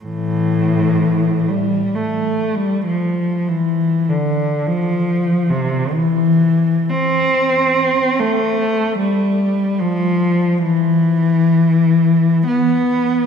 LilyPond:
\new Staff \with { instrumentName = "Cello" } { \clef bass \time 3/4 \key e \phrygian \tempo 4 = 69 <a, e>4. g8 \tuplet 3/2 { a4 g8 } | \tuplet 3/2 { f4 e8~ e8 d4 } f4 | c8 e4 c'4. | a4 g4 f4 |
e2 b4 | }